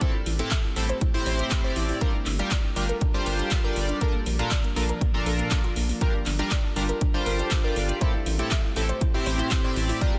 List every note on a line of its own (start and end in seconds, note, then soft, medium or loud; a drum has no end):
0.01 0.13 A2 medium
0.01 1.99 A3 medium
0.01 0.13 C4 medium
0.01 1.99 C4 medium
0.01 0.13 E4 medium
0.01 0.13 G4 medium
0.01 1.99 G4 medium
0.01 0.13 A4 medium
0.01 0.10 C5 loud
0.01 kick loud
0.01 closed hi-hat medium
0.14 0.22 E4 medium
0.26 0.42 A1 loud
0.26 0.35 E4 medium
0.26 open hi-hat loud
0.39 0.50 A2 medium
0.39 0.50 C4 medium
0.39 0.50 E4 medium
0.39 0.47 E4 medium
0.39 0.50 G4 medium
0.39 0.50 A4 medium
0.39 closed hi-hat medium
0.51 0.60 E5 medium
0.51 kick loud
0.51 clap loud
0.51 closed hi-hat medium
0.64 0.72 E4 medium
0.76 0.92 A1 medium
0.76 0.84 A2 medium
0.76 0.84 C4 medium
0.76 0.84 E4 medium
0.76 0.85 E4 medium
0.76 0.84 G4 medium
0.76 0.84 A4 loud
0.76 open hi-hat loud
0.89 0.97 C5 loud
0.89 closed hi-hat medium
1.01 1.10 E4 medium
1.01 kick loud
1.01 closed hi-hat medium
1.14 1.61 A2 medium
1.14 1.61 C4 medium
1.14 1.61 E4 medium
1.14 1.22 E4 medium
1.14 1.61 G4 medium
1.14 1.61 C5 loud
1.26 1.42 A1 loud
1.26 1.35 C5 medium
1.26 open hi-hat loud
1.39 1.47 E4 medium
1.39 closed hi-hat medium
1.51 1.60 E4 medium
1.51 kick loud
1.51 clap loud
1.51 closed hi-hat medium
1.64 1.98 A2 medium
1.64 1.98 C4 medium
1.64 1.98 E4 medium
1.64 1.98 G4 medium
1.64 1.72 C5 loud
1.64 1.98 D5 medium
1.76 1.92 A1 medium
1.76 1.85 E4 medium
1.76 open hi-hat loud
1.89 1.97 E4 medium
1.89 open hi-hat medium
2.01 3.99 G3 medium
2.01 2.13 G3 medium
2.01 7.97 D4 medium
2.01 2.13 D4 medium
2.01 2.13 F4 medium
2.01 3.99 F4 medium
2.01 2.13 G4 medium
2.01 3.99 A4 medium
2.01 2.10 A#4 loud
2.01 2.13 A#4 medium
2.01 3.99 A#4 medium
2.01 kick loud
2.01 closed hi-hat medium
2.14 2.22 D4 medium
2.26 2.42 G1 loud
2.26 2.35 D4 medium
2.26 clap soft
2.26 open hi-hat loud
2.39 2.50 G3 medium
2.39 2.50 D4 medium
2.39 2.47 D4 medium
2.39 2.50 F4 medium
2.39 2.50 G4 medium
2.39 2.50 A#4 loud
2.39 closed hi-hat medium
2.51 2.60 D5 medium
2.51 kick loud
2.51 clap loud
2.51 closed hi-hat medium
2.64 2.72 D4 medium
2.76 2.92 G1 medium
2.76 2.84 G3 medium
2.76 2.84 D4 medium
2.76 2.85 D4 medium
2.76 2.84 F4 medium
2.76 2.84 G4 medium
2.76 2.83 A#4 loud
2.76 open hi-hat loud
2.89 2.97 A#4 loud
2.89 closed hi-hat medium
3.01 3.10 D4 medium
3.01 kick loud
3.01 closed hi-hat medium
3.14 3.61 G3 loud
3.14 3.22 D4 medium
3.14 3.61 D4 medium
3.14 3.61 F4 medium
3.14 3.61 G4 medium
3.14 3.61 C5 loud
3.26 3.42 G1 loud
3.26 3.35 A#4 medium
3.26 open hi-hat loud
3.39 3.47 D4 medium
3.39 closed hi-hat medium
3.51 3.60 D4 medium
3.51 kick loud
3.51 clap loud
3.51 closed hi-hat medium
3.64 3.98 G3 medium
3.64 3.98 D4 medium
3.64 3.98 F4 medium
3.64 3.98 G4 medium
3.64 3.72 A#4 loud
3.64 3.98 D5 medium
3.76 3.92 G1 medium
3.76 3.85 D4 medium
3.76 open hi-hat loud
3.89 3.97 D4 medium
3.89 closed hi-hat soft
4.01 4.13 A#2 medium
4.01 5.99 F3 medium
4.01 5.99 A#3 medium
4.01 4.13 D4 medium
4.01 4.13 F4 medium
4.01 4.13 A4 medium
4.01 4.13 A#4 medium
4.01 4.10 A#4 loud
4.01 kick loud
4.01 closed hi-hat medium
4.14 4.22 A#3 medium
4.26 4.42 A#1 loud
4.26 4.35 A#3 medium
4.26 open hi-hat loud
4.39 4.50 A#2 medium
4.39 4.47 A#3 medium
4.39 4.50 D4 medium
4.39 4.50 F4 medium
4.39 4.50 A4 medium
4.39 4.50 A#4 medium
4.39 closed hi-hat soft
4.51 4.60 D5 medium
4.51 kick loud
4.51 clap loud
4.51 closed hi-hat medium
4.64 4.72 A#3 medium
4.64 closed hi-hat soft
4.76 4.92 A#1 medium
4.76 4.83 A#2 medium
4.76 4.85 A#3 medium
4.76 4.83 D4 medium
4.76 4.83 F4 medium
4.76 4.83 A4 medium
4.76 4.84 A#4 loud
4.76 open hi-hat loud
4.89 4.97 A#4 loud
4.89 closed hi-hat soft
5.01 5.10 A#3 medium
5.01 kick loud
5.01 closed hi-hat medium
5.14 5.49 A#2 loud
5.14 5.22 A#3 medium
5.14 5.49 D4 medium
5.14 5.49 F4 medium
5.14 5.49 A4 medium
5.14 5.49 A#4 loud
5.26 5.42 A#1 loud
5.26 5.35 A4 medium
5.26 open hi-hat loud
5.39 5.47 A#3 medium
5.39 closed hi-hat medium
5.51 5.58 A#2 medium
5.51 5.59 D4 medium
5.51 5.58 F4 medium
5.51 5.58 A4 medium
5.51 5.58 A#4 medium
5.51 kick loud
5.51 clap loud
5.51 closed hi-hat medium
5.64 5.72 F4 loud
5.64 closed hi-hat soft
5.76 5.92 A#1 loud
5.76 5.85 A#3 medium
5.76 open hi-hat loud
5.89 5.97 A#3 medium
5.89 open hi-hat medium
6.01 6.13 G3 medium
6.01 7.99 G3 medium
6.01 6.13 D4 medium
6.01 6.13 F4 medium
6.01 7.99 F4 medium
6.01 6.13 G4 medium
6.01 7.99 A4 medium
6.01 6.13 A#4 medium
6.01 6.10 A#4 loud
6.01 7.99 A#4 medium
6.01 kick loud
6.01 closed hi-hat medium
6.14 6.22 D4 medium
6.26 6.42 G1 loud
6.26 6.35 D4 medium
6.26 clap soft
6.26 open hi-hat loud
6.39 6.50 G3 medium
6.39 6.50 D4 medium
6.39 6.47 D4 medium
6.39 6.50 F4 medium
6.39 6.50 G4 medium
6.39 6.50 A#4 loud
6.39 closed hi-hat soft
6.51 6.60 D5 medium
6.51 kick loud
6.51 clap loud
6.51 closed hi-hat medium
6.64 6.72 D4 medium
6.76 6.92 G1 medium
6.76 6.83 G3 medium
6.76 6.83 D4 medium
6.76 6.85 D4 medium
6.76 6.83 F4 medium
6.76 6.83 G4 medium
6.76 6.83 A#4 loud
6.76 open hi-hat loud
6.89 6.97 A#4 loud
6.89 closed hi-hat medium
7.01 7.10 D4 medium
7.01 kick loud
7.01 closed hi-hat medium
7.14 7.61 G3 loud
7.14 7.61 D4 medium
7.14 7.22 D4 medium
7.14 7.61 F4 medium
7.14 7.61 G4 medium
7.14 7.61 C5 loud
7.26 7.42 G1 loud
7.26 7.35 A#4 medium
7.26 open hi-hat loud
7.39 7.47 D4 medium
7.39 closed hi-hat medium
7.51 7.60 D4 medium
7.51 kick loud
7.51 clap loud
7.51 closed hi-hat medium
7.64 7.98 G3 medium
7.64 7.98 D4 medium
7.64 7.98 F4 medium
7.64 7.98 G4 medium
7.64 7.72 A#4 loud
7.64 7.98 D5 medium
7.76 7.92 G1 medium
7.76 7.85 D4 medium
7.76 open hi-hat loud
7.89 7.97 D4 medium
7.89 closed hi-hat soft
8.01 8.13 A2 medium
8.01 9.99 A3 medium
8.01 9.99 C4 medium
8.01 8.13 C4 medium
8.01 8.13 E4 medium
8.01 9.99 G4 medium
8.01 8.13 G4 medium
8.01 8.13 A4 medium
8.01 8.10 C5 loud
8.01 kick loud
8.01 closed hi-hat medium
8.14 8.22 E4 medium
8.26 8.42 A1 loud
8.26 8.35 E4 medium
8.26 open hi-hat loud
8.39 8.50 A2 medium
8.39 8.50 C4 medium
8.39 8.47 E4 medium
8.39 8.50 E4 medium
8.39 8.50 G4 medium
8.39 8.50 A4 medium
8.39 closed hi-hat medium
8.51 8.60 E5 medium
8.51 kick loud
8.51 clap loud
8.51 closed hi-hat medium
8.64 8.72 E4 medium
8.76 8.92 A1 medium
8.76 8.84 A2 medium
8.76 8.84 C4 medium
8.76 8.84 E4 medium
8.76 8.85 E4 medium
8.76 8.84 G4 medium
8.76 8.84 A4 loud
8.76 open hi-hat loud
8.89 8.97 C5 loud
8.89 closed hi-hat medium
9.01 9.10 E4 medium
9.01 kick loud
9.01 closed hi-hat medium
9.14 9.61 A2 loud
9.14 9.61 C4 medium
9.14 9.61 E4 medium
9.14 9.22 E4 medium
9.14 9.61 G4 medium
9.14 9.61 C5 loud
9.26 9.42 A1 medium
9.26 9.35 C5 medium
9.26 open hi-hat loud
9.39 9.47 E4 medium
9.39 closed hi-hat medium
9.51 9.60 E4 medium
9.51 kick loud
9.51 clap loud
9.51 closed hi-hat medium
9.64 9.98 A2 medium
9.64 9.98 C4 medium
9.64 9.98 E4 medium
9.64 9.98 G4 medium
9.64 9.72 C5 loud
9.64 9.98 D5 medium
9.76 9.92 A1 medium
9.76 9.85 E4 medium
9.76 open hi-hat loud
9.89 9.97 E4 medium
9.89 open hi-hat medium
10.01 10.13 G3 medium
10.01 10.19 G3 medium
10.01 10.19 D4 medium
10.01 10.13 D4 medium
10.01 10.19 F4 medium
10.01 10.13 F4 medium
10.01 10.13 G4 medium
10.01 10.19 A4 medium
10.01 10.19 A#4 medium
10.01 10.13 A#4 medium
10.01 10.10 D5 loud
10.01 kick loud
10.01 closed hi-hat medium
10.14 10.19 G4 medium